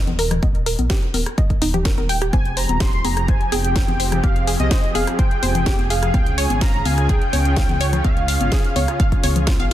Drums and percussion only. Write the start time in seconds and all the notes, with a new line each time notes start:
0.07 closed hi-hat, high conga, low conga
0.19 open hi-hat
0.31 cross-stick, closed hi-hat, low conga
0.43 kick, closed hi-hat, high conga
0.55 closed hi-hat
0.66 open hi-hat
0.79 closed hi-hat, high conga
0.90 kick, snare, closed hi-hat
1.03 closed hi-hat
1.14 open hi-hat, high conga
1.26 cross-stick, closed hi-hat
1.38 kick, closed hi-hat
1.50 kick, closed hi-hat
1.62 open hi-hat, high conga
1.74 closed hi-hat, low conga
1.85 kick, snare, closed hi-hat
1.98 closed hi-hat, high conga
2.09 open hi-hat
2.22 cross-stick, closed hi-hat
2.33 kick, closed hi-hat, high conga
2.45 closed hi-hat
2.57 open hi-hat
2.69 closed hi-hat, high conga
2.80 kick, snare, closed hi-hat
2.93 closed hi-hat
3.05 open hi-hat, high conga
3.17 cross-stick, closed hi-hat
3.28 kick, closed hi-hat
3.41 closed hi-hat
3.52 open hi-hat, high conga
3.64 closed hi-hat
3.76 kick, snare, closed hi-hat
3.88 closed hi-hat, high conga, low conga
4.00 open hi-hat
4.12 cross-stick, closed hi-hat, low conga
4.24 kick, closed hi-hat, high conga
4.36 closed hi-hat
4.47 open hi-hat
4.60 closed hi-hat, high conga
4.71 kick, snare, closed hi-hat
4.84 closed hi-hat
4.95 open hi-hat, high conga
5.07 cross-stick, closed hi-hat
5.19 kick, closed hi-hat
5.31 closed hi-hat
5.43 open hi-hat, high conga
5.55 closed hi-hat, low conga
5.66 kick, snare, closed hi-hat
5.79 closed hi-hat, high conga
5.90 open hi-hat
6.03 cross-stick, closed hi-hat
6.14 kick, closed hi-hat, high conga
6.26 closed hi-hat
6.38 open hi-hat
6.50 closed hi-hat, high conga
6.61 kick, snare, closed hi-hat
6.74 closed hi-hat
6.85 open hi-hat, high conga
6.98 cross-stick, closed hi-hat
7.09 kick, closed hi-hat
7.22 closed hi-hat
7.33 open hi-hat, high conga
7.45 closed hi-hat
7.56 kick, snare, closed hi-hat
7.69 closed hi-hat, high conga, low conga
7.81 open hi-hat
7.93 cross-stick, closed hi-hat, low conga
8.04 kick, closed hi-hat, high conga
8.17 closed hi-hat
8.28 open hi-hat
8.41 closed hi-hat, high conga
8.52 kick, snare, closed hi-hat
8.64 closed hi-hat
8.76 open hi-hat, high conga
8.88 cross-stick, closed hi-hat
9.00 kick, closed hi-hat
9.12 kick, closed hi-hat
9.24 open hi-hat, high conga
9.36 closed hi-hat, low conga
9.47 kick, snare, closed hi-hat
9.60 closed hi-hat, high conga